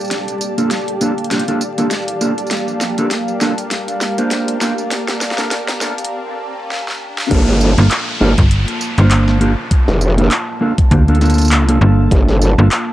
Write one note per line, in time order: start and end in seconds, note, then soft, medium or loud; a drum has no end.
0.00 7.27 A#3 medium
0.00 6.11 G4 medium
0.00 7.27 G4 medium
0.00 2.47 A4 medium
0.00 6.11 D5 medium
0.00 7.27 F5 medium
0.00 6.11 A5 medium
0.00 tambourine soft
0.00 riser medium
0.04 tambourine soft
0.08 snare medium
0.08 closed hi-hat medium
0.08 tambourine soft
0.11 tambourine soft
0.28 closed hi-hat soft
0.28 tambourine soft
0.41 tambourine medium
0.58 0.71 A#3 medium
0.58 0.71 D4 medium
0.58 0.71 F4 medium
0.58 0.71 A4 medium
0.58 closed hi-hat soft
0.58 tambourine soft
0.71 snare medium
0.71 closed hi-hat medium
0.71 tambourine soft
0.88 closed hi-hat soft
1.01 1.12 A#3 medium
1.01 1.12 D4 medium
1.01 1.12 F4 medium
1.01 1.12 A4 loud
1.01 tambourine medium
1.18 closed hi-hat soft
1.24 closed hi-hat soft
1.31 1.42 A#3 medium
1.31 1.42 D4 medium
1.31 1.42 F4 medium
1.31 1.42 G4 medium
1.31 snare medium
1.31 closed hi-hat medium
1.31 tambourine soft
1.39 closed hi-hat soft
1.48 1.61 A#3 medium
1.48 1.61 D4 medium
1.48 1.61 F4 medium
1.48 1.61 A4 medium
1.48 closed hi-hat soft
1.48 tambourine soft
1.61 tambourine medium
1.78 1.86 A#3 medium
1.78 1.86 D4 medium
1.78 1.86 F4 medium
1.78 1.86 A4 medium
1.78 closed hi-hat soft
1.78 tambourine soft
1.91 snare medium
1.91 closed hi-hat medium
1.91 tambourine soft
2.08 closed hi-hat medium
2.08 tambourine soft
2.21 2.32 A#3 medium
2.21 2.32 D4 medium
2.21 2.32 F4 medium
2.21 2.32 A4 medium
2.21 tambourine medium
2.38 closed hi-hat soft
2.38 tambourine soft
2.47 tambourine soft
2.51 7.27 A#4 medium
2.51 snare medium
2.51 closed hi-hat medium
2.51 tambourine soft
2.57 tambourine soft
2.68 tambourine soft
2.81 snare medium
2.81 tambourine medium
2.98 3.06 A#3 medium
2.98 3.06 D4 medium
2.98 3.06 F4 medium
2.98 3.06 A4 loud
2.98 closed hi-hat soft
2.98 tambourine soft
3.11 snare medium
3.11 closed hi-hat medium
3.11 tambourine soft
3.28 tambourine soft
3.41 3.52 A#3 medium
3.41 3.52 D4 medium
3.41 3.52 F4 medium
3.41 3.52 A4 loud
3.41 snare medium
3.41 tambourine medium
3.58 closed hi-hat medium
3.58 tambourine soft
3.71 snare medium
3.71 closed hi-hat medium
3.71 tambourine soft
3.88 closed hi-hat soft
3.88 tambourine soft
4.01 snare medium
4.01 tambourine medium
4.18 4.58 A#3 medium
4.18 4.58 D4 medium
4.18 4.58 F4 medium
4.18 4.58 C5 medium
4.18 closed hi-hat soft
4.18 tambourine soft
4.31 snare medium
4.31 closed hi-hat medium
4.31 tambourine soft
4.48 closed hi-hat medium
4.48 tambourine soft
4.61 4.72 A#3 loud
4.61 4.72 D4 medium
4.61 4.72 F4 medium
4.61 4.72 G4 loud
4.61 snare medium
4.61 tambourine medium
4.78 tambourine soft
4.91 snare medium
4.91 closed hi-hat medium
4.91 tambourine soft
5.08 snare medium
5.08 closed hi-hat soft
5.08 tambourine soft
5.21 snare medium
5.21 tambourine medium
5.31 snare medium
5.38 5.51 A#3 medium
5.38 5.51 D4 medium
5.38 5.51 F4 medium
5.38 5.51 A4 medium
5.38 snare medium
5.38 closed hi-hat soft
5.38 tambourine soft
5.41 snare medium
5.51 snare medium
5.51 closed hi-hat medium
5.51 tambourine soft
5.68 snare medium
5.68 closed hi-hat soft
5.68 tambourine soft
5.81 5.92 A#3 medium
5.81 5.92 D4 medium
5.81 5.92 F4 medium
5.81 5.92 A4 loud
5.81 snare loud
5.81 tambourine medium
5.98 closed hi-hat medium
5.98 tambourine soft
6.05 closed hi-hat medium
6.71 snare medium
6.88 snare medium
7.18 snare medium
7.31 7.75 G1 loud
7.31 7.71 A#3 loud
7.31 12.93 A#3 medium
7.31 7.71 D4 medium
7.31 12.93 F4 medium
7.31 7.71 F4 medium
7.31 7.71 A4 loud
7.31 12.93 A5 medium
7.31 kick loud
7.31 closed hi-hat medium
7.31 crash loud
7.31 downlifter medium
7.48 snare soft
7.61 tambourine medium
7.78 7.89 G1 loud
7.78 7.86 A#3 medium
7.78 7.86 D4 medium
7.78 7.86 F4 medium
7.78 7.86 A4 loud
7.78 closed hi-hat soft
7.91 clap loud
7.91 closed hi-hat medium
8.21 8.35 G1 loud
8.21 8.32 A#3 loud
8.21 8.32 D4 medium
8.21 8.32 F4 medium
8.21 8.32 A4 loud
8.38 8.66 G1 loud
8.38 kick loud
8.38 closed hi-hat medium
8.51 closed hi-hat medium
8.68 closed hi-hat soft
8.81 tambourine medium
8.98 9.55 G1 loud
8.98 9.38 A#3 medium
8.98 9.38 D4 medium
8.98 9.38 F4 medium
8.98 9.38 C5 medium
8.98 closed hi-hat soft
9.11 clap loud
9.11 closed hi-hat medium
9.28 snare soft
9.41 9.52 A#3 loud
9.41 9.52 D4 medium
9.41 9.52 F4 medium
9.41 9.52 G4 loud
9.41 closed hi-hat medium
9.71 kick loud
9.71 closed hi-hat medium
9.88 10.29 F1 loud
9.88 snare soft
10.01 tambourine medium
10.18 10.31 A#3 medium
10.18 10.31 D4 medium
10.18 10.31 F4 medium
10.18 10.31 A4 medium
10.18 closed hi-hat soft
10.31 clap loud
10.31 closed hi-hat medium
10.61 10.72 A#3 medium
10.61 10.72 D4 medium
10.61 10.72 F4 medium
10.61 10.72 A4 loud
10.78 kick loud
10.78 closed hi-hat medium
10.91 11.53 D2 loud
10.91 11.02 A#3 medium
10.91 11.02 D4 medium
10.91 11.02 F4 medium
10.91 11.02 G4 medium
10.91 kick loud
10.91 closed hi-hat medium
11.08 11.19 A#3 medium
11.08 11.19 D4 medium
11.08 11.19 F4 medium
11.08 11.19 A4 loud
11.08 closed hi-hat soft
11.15 closed hi-hat soft
11.21 11.64 A#3 loud
11.21 11.64 D4 medium
11.21 11.64 F4 medium
11.21 11.64 A4 loud
11.21 snare soft
11.21 closed hi-hat soft
11.21 tambourine soft
11.25 tambourine soft
11.30 closed hi-hat soft
11.30 tambourine soft
11.34 tambourine soft
11.38 closed hi-hat soft
11.38 tambourine soft
11.42 tambourine soft
11.45 tambourine medium
11.48 clap loud
11.48 closed hi-hat medium
11.48 tambourine medium
11.53 11.79 C#2 loud
11.68 11.80 A#3 loud
11.68 11.80 D4 medium
11.68 11.79 F4 medium
11.68 11.80 A4 loud
11.68 closed hi-hat medium
11.81 12.09 G1 medium
11.81 12.54 A#3 medium
11.81 12.54 D4 medium
11.81 12.54 F4 medium
11.81 12.54 A4 medium
12.11 12.56 G1 loud
12.11 kick loud
12.11 closed hi-hat medium
12.28 snare soft
12.42 tambourine medium
12.58 12.69 G1 loud
12.58 12.67 A#3 medium
12.58 12.66 D4 medium
12.58 12.67 F4 medium
12.58 12.67 A4 loud
12.71 clap loud
12.71 closed hi-hat medium